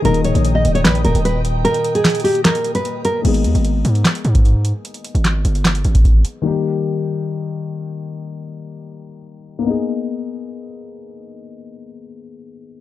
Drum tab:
CC |--------------------------------|--------------------------------|x-------------------------------|--------------------------------|
HH |x-x-x-x-x---x-x-x-x-x-x-x---x---|x-x-x-x-xxxxo-x-x-x-x-x-x---x---|x-x-x-x-x---x-x-x-x-x-x-x---x---|x-x-x-x-x---x-x-x-x-x-x-x---x---|
CP |----------------x---------------|--------x-------x---------------|----------------x---------------|--------x-------x---------------|
SD |----------------o---------------|--------o-------o---------------|----------------o---------------|--------o-------o---------------|
BD |--------------------------------|--------------------------------|----------------------o---------|----------------------o-o-------|

CC |--------------------------------|--------------------------------|--------------------------------|--------------------------------|
HH |--------------------------------|--------------------------------|--------------------------------|--------------------------------|
CP |--------------------------------|--------------------------------|--------------------------------|--------------------------------|
SD |--------------------------------|--------------------------------|--------------------------------|--------------------------------|
BD |--------------------------------|--------------------------------|--------------------------------|--------------------------------|